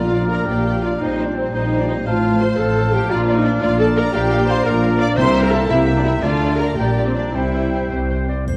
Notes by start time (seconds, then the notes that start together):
Already playing: A#1 A#2 F3 D4 F4 D5 F5 A#5
0.14 D5
0.29 A#4 D5 A#5
0.47 A#1 A#2 G4 D5 G5
0.68 D5
0.82 F4 D5 F5
0.99 A#1 A#2 G3 C4 D#4 C5 D#5 G5 A#5
1.03 C5
1.19 C5
1.25 D4 D5
1.35 C4 C5
1.52 A#1 A#2 D#4 C5 D#5 G5 A#5
1.73 C5
1.79 D4 D5
1.87 D#4 C5 D#5
2.05 A1 A2 F3 F4 C5 F5 A5
2.25 C5
2.40 C5 C6
2.57 A1 A2 A4 C5 F5 A5
2.78 C5
2.93 G4 C5 G5
3.10 A#1 A#2 D4 F4 D5 F5 A#5
3.28 D5
3.36 D#4 D#5
3.45 D4 D5
3.61 A#1 A#2 F4 D5 F5 A#5
3.78 A4 D5 A5
3.96 A#4 D5 A#5
4.13 A#1 A#2 F3 D4 G4 D5 F5 G5 A#5
4.31 F5
4.47 C5 F5 C6
4.64 A#1 A#2 F3 D4 A#4 D5 F5 A#5
4.83 F5
5.00 D5 F5 D6
5.16 C2 C3 A#3 E4 C5 E5 G5 A#5 C6
5.35 E5
5.42 A#4 A#5
5.50 A4 E5 A5
5.69 C2 C3 A#3 E4 E5 G5 A#5
5.86 E5
5.97 D4 D5
6.05 E4 E5
6.22 D2 D3 A3 D4 F4 D5 F5 A5
6.43 D5
6.59 A#4 D5 A#5
6.77 A#1 A#2 G3 D4 G4 D5 G5 A#5
6.97 D5
7.06 C4 C5
7.15 D4 D5
7.33 C2 C3 G3 C4 E4 C5 E5 G5
7.53 C5
7.73 C5
7.90 C2 C3 C5
8.11 C5
8.29 C5 D5
8.48 F1 F2 C5, triangle